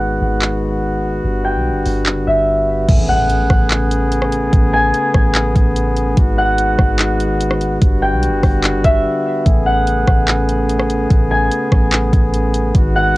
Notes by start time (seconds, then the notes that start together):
Already playing: G#1 D#3 G#3 B3 F#4 F#5
0.21 G#1
0.42 clap
1.24 G1 D3 G3
1.44 G5
1.55 B1
1.70 G1
1.86 G1, open hi-hat
2.06 F#1, clap
2.17 G1
2.27 G1 E5
2.88 A1 C#3 A3 B3 G#4, kick, closed hi-hat, crash, impact
3.09 F#5
3.30 closed hi-hat
3.50 A1, kick, cross-stick
3.71 clap, closed hi-hat
3.91 closed hi-hat
4.12 closed hi-hat
4.22 cross-stick
4.32 closed hi-hat
4.53 A1, kick, closed hi-hat
4.73 G#5
4.94 closed hi-hat
5.14 A1, kick, cross-stick
5.35 clap, closed hi-hat
5.56 A1, kick, closed hi-hat
5.76 closed hi-hat
5.97 closed hi-hat
6.17 G#1 D#3 G#3 F#4, kick, closed hi-hat
6.38 F#5
6.58 closed hi-hat
6.79 G#1, kick, cross-stick
6.99 clap, closed hi-hat
7.20 closed hi-hat
7.41 closed hi-hat
7.51 cross-stick
7.61 closed hi-hat
7.82 G1 D3 G3 B3 F#4, kick, closed hi-hat
8.02 G5
8.13 B1
8.23 closed hi-hat
8.28 G1
8.43 G1, kick, cross-stick, open hi-hat
8.64 F#1, clap, closed hi-hat
8.74 G1
8.84 G1 E5, kick, closed hi-hat
9.46 A1 C#3 A3 G#4, kick, closed hi-hat
9.66 F#5
9.87 closed hi-hat
10.08 A1, kick, cross-stick
10.28 clap, closed hi-hat
10.49 closed hi-hat
10.69 closed hi-hat
10.79 cross-stick
10.90 closed hi-hat
11.10 A1, kick, closed hi-hat
11.31 G#5
11.52 closed hi-hat
11.72 A1, kick, cross-stick
11.93 clap, closed hi-hat
12.13 A1, kick, closed hi-hat
12.34 closed hi-hat
12.54 closed hi-hat
12.75 G#1 D#3 G#3 F#4, kick, closed hi-hat
12.95 F#5